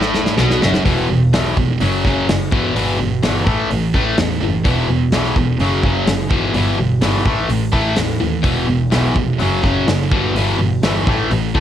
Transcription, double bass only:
Already playing: A1
0.37 B1
0.61 F#1
0.86 E1
1.09 E1
1.32 B1
1.57 F1
1.80 F#1
2.05 F#1
2.29 F#1
2.52 G1
2.76 G1
3.00 G1
3.24 G1
3.47 A1
3.71 A1
3.94 A1
4.18 E2
4.41 F#1
4.65 E1
4.88 E1
5.11 B1
5.36 E1
5.58 F#1
5.83 F#1
6.07 F#1
6.31 G1
6.53 G1
6.78 G1
7.01 G1
7.25 A1
7.49 A1
7.73 A1
7.97 E2
8.21 D#2
8.44 E1
8.68 E1
8.92 B1
9.15 F1
9.40 F#1
9.64 F#1
9.86 F#1
10.12 G1
10.34 G1
10.58 G1
10.82 G1
11.07 A1
11.30 A1
11.55 A1

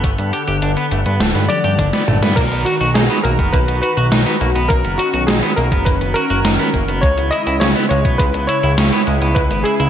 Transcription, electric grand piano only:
1.49 D5
2.36 A#4
2.65 F#4
2.94 G#4
3.23 A#4
3.53 B4
3.82 B4
4.69 A#4
4.98 F#4
5.27 G#4
5.56 A#4
5.85 B4
6.14 A#4
7.01 C#5
7.31 D#5
7.60 C#5
7.89 C#5
8.18 B4
8.47 C#5
9.35 B4
9.64 G#4

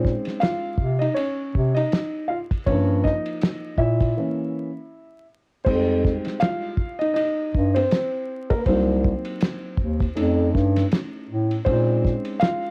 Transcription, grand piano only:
Already playing: G#3 C4 C#4 D#4 C5
0.40 F4 F5
0.99 D#4 D#5
1.14 C#4 C#5
1.75 D#4 D#5
2.28 F4 F5
2.66 F3 A#3 C#4 C#5
3.04 D#4 D#5
3.78 E4 E5
4.17 E3 A#3 C#4
5.65 G3 G#3 C4 D#4 C5
6.40 F4 F5
6.99 D#4 D#5
7.14 D#4 D#5
7.74 C4 C5
8.50 A#3 A#4
8.59 B4
8.66 F#3 A#3 C4 D#4 C5
10.15 A3 C#4 D#4
11.65 G#3 C4 C#4 D#4 C5
12.39 F4 F5

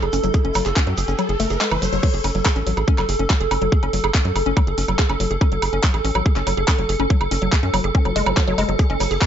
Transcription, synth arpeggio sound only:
0.02 G#4
0.13 C#4
0.24 F#3
0.34 G#4
0.45 C#4
0.55 F#3
0.66 G#4
0.76 C#4
0.87 F#3
0.98 G#4
1.08 C#4
1.19 F#3
1.29 G#4
1.40 A3
1.50 G#4
1.61 G#3
1.71 E3
1.82 F#3
1.93 F#3
2.03 F#3
2.14 G#4
2.24 C#4
2.35 F#3
2.45 G#4
2.56 C#4
2.67 F#3
2.77 G#4
2.88 C#4
2.98 F#3
3.09 G#4
3.19 C#4
3.30 F#3
3.41 G#4
3.51 C#4
3.62 F#3
3.72 G#4
3.83 C#4
3.93 F#3
4.04 G#4
4.14 C#4
4.25 F#3
4.36 G#4
4.46 C#4
4.57 F#3
4.67 G#4
4.78 C#4
4.88 F#3
4.99 G#4
5.09 C#4
5.20 F#3
5.31 G#4
5.41 C#4
5.52 F#3
5.62 G#4
5.73 C#4
5.83 F#3
5.94 G#4
6.05 C#4
6.15 F#3
6.26 G#4
6.36 C#4
6.47 F#3
6.57 G#4
6.68 C#4
6.79 F#3
6.89 G#4
7.00 C#4
7.10 F#3
7.21 G#4
7.31 C#4
7.42 F#3
7.52 G#4
7.63 C#4
7.74 F#3
7.84 G#4
7.95 C#4
8.05 F#3
8.16 G#3
8.26 F#3
8.37 F#3
8.48 F#3
8.58 G#3
8.69 F#3
8.79 G#4
8.90 C#4
9.00 F#3
9.11 G#4
9.21 C#4

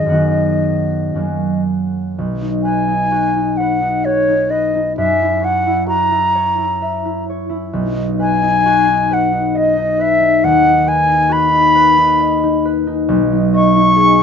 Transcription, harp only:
Already playing: G#4 G#5
0.06 F#2 B3 F#5
0.10 D#3 D#4 F#4
1.15 F#2 F#3 A#3 C#4
2.18 B1
2.42 D#4
2.65 B4
2.88 D#4
3.11 F#4
3.36 D#4
3.60 B4
3.81 D#4
4.06 F#4
4.29 D#4
4.51 B4
4.75 D#4
4.98 F#2
5.21 E4
5.42 C#5
5.67 E4
5.87 F#4
6.11 E4
6.35 C#5
6.58 E4
6.82 E5
7.05 E4
7.30 C#5
7.49 E4
7.73 B1
7.96 D#4
8.19 B4
8.43 D#4
8.66 F#4
8.89 D#4
9.11 B4
9.32 D#4
9.55 D#5
9.77 D#4
9.99 B4
10.20 D#4
10.44 D#2
10.65 D#4
10.87 B4
11.09 D#4
11.29 F#4
11.52 D#4
11.75 B4
11.98 D#4
12.20 D#5
12.44 D#4
12.65 B4
12.87 D#4
13.09 B1
13.32 D#4
13.54 D#5
13.76 D#4
13.96 G#4
14.18 D#4

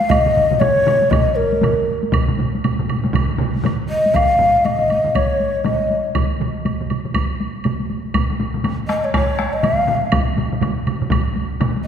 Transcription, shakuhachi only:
Already playing: F5
0.10 D#5
0.60 C#5
1.10 D#5
1.35 A#4
3.89 D#5
4.15 F5
4.65 D#5
5.15 C#5
5.65 D#5
8.88 D#5
9.04 C#5
9.15 C#5
9.53 D#5
9.64 F5

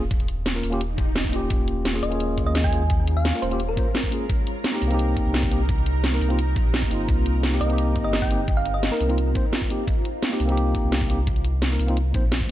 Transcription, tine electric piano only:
0.53 A#3 C#4 F4 A#4
0.70 A#3 C#4 F4 G4
1.30 A#3 C#4
1.34 F4 G4
1.93 A#3 C#4 F4 G#4
2.08 A#3 C#4
2.13 F4 G#4
2.71 A#3 C#4 F4 G#4
3.32 A#3 C#4 F4 A#4
3.50 A#3 C#4 F4 G4
3.76 A#3 C#4 F4 C5
4.10 A#3 C#4 F4 G#4
4.72 A#3 C4 D#4 G4
4.88 A#3 C4
4.92 D#4 G4
5.50 A#3 C4 D#4 G4
6.11 A#3 C4 D#4 A#4
6.28 A#3 C4 D#4 F4
6.88 A#3 C4
6.92 D#4 F4
7.51 A#3 C4 D#4 G4
7.66 A#3 C4
7.71 D#4 G4
8.29 A#3 C4 D#4 G4
8.90 A#3 C4 D#4 A#4
9.08 A#3 C4 D#4 F4
9.34 A#3 C4 D#4 C5
9.68 A#3 C4 D#4 G4
10.30 A#3 C4 D#4 G4
10.45 A#3 C4
10.50 D#4 G4
11.08 A#3 C4 D#4 G4
11.70 A#3 C4 D#4 A#4
11.87 A#3 C4 D#4 F4
12.13 A#3 C4 D#4 C5
12.48 A#3

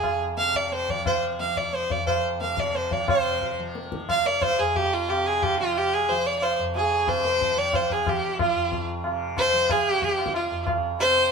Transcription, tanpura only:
Already playing: F2 C3 F3
0.37 C3
0.90 F3
1.40 F3
1.89 F2
2.40 C3
2.91 F3
3.09 C3
3.59 F3
4.09 F3
4.59 F2
5.10 C3
5.60 F3
6.11 F3
6.59 F2
7.07 C3
7.57 F3
8.07 F3
8.55 F2
9.04 C3
9.53 F3
10.01 F3
10.50 F2
10.98 C3

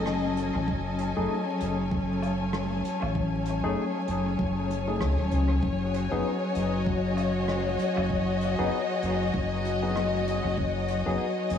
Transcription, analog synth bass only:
Already playing: F#1
0.55 A1
0.68 F#1
1.17 F#1
1.61 F#1
3.02 A1
3.64 F#1
4.08 F#1
4.39 F#1
5.01 C#2
5.18 D#1
5.32 C#2
5.63 F#1
6.11 F#1
6.56 F#1
7.97 F#1
8.59 F#1
9.03 F#1
9.34 F#1
10.44 F#1
10.58 F#1
11.06 F#1
11.50 F#1

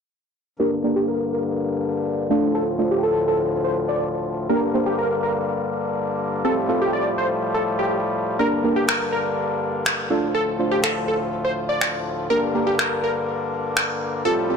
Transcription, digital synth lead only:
0.60 A#4
0.96 G4
1.08 A#4
1.33 A#4
2.55 A4
2.91 G4
3.03 A4
3.28 A4
3.64 C5
3.89 D5
4.49 A#4
4.86 G4
4.98 A#4
5.23 A#4
6.45 A4
6.82 G4
6.93 D5
7.18 C5
7.54 A4
7.79 G4
8.39 A#4
8.76 G4
8.88 A#4
9.12 A#4
10.35 A4
10.71 G4
10.84 A4
11.08 A4
11.45 C5
11.69 D5
12.30 A#4
12.67 G4
12.79 A#4
13.04 A#4
14.25 A4

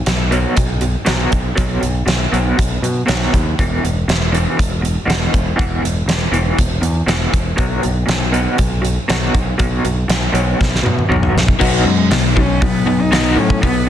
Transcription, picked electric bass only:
0.07 B1
0.58 B1
1.08 B1
1.33 B1
1.58 B1
1.83 B1
2.07 B1
2.33 B1
2.59 B1
2.82 B2
3.09 B1
3.34 D#2
3.59 E1
3.84 E1
4.08 E1
4.59 E1
5.08 E1
5.34 E1
5.59 E1
5.82 E1
6.06 E1
6.32 E1
6.59 E1
6.82 E2
7.07 E1
7.34 E1
7.59 B1
7.84 B1
8.08 B1
8.59 B1
9.10 B1
9.35 B1
9.60 B1
9.85 B1
10.09 B1
10.34 B1
10.61 B1
10.83 B2
11.10 B1
11.35 B1
11.62 B1
11.85 F#2
12.11 B1
12.37 B1
12.62 B1
12.86 B1
13.12 B1
13.36 A2
13.63 B1

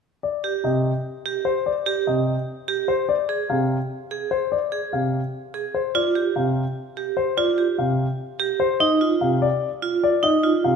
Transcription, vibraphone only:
0.44 G4
1.26 G4
1.86 G4
2.68 G4
3.29 G#4
4.11 G#4
4.72 G#4
5.54 G#4
5.95 F4
6.16 G4
6.97 G4
7.38 F4
7.58 G4
8.40 G4
8.80 D#4
9.01 F4
9.82 F4
10.23 D#4
10.43 F4

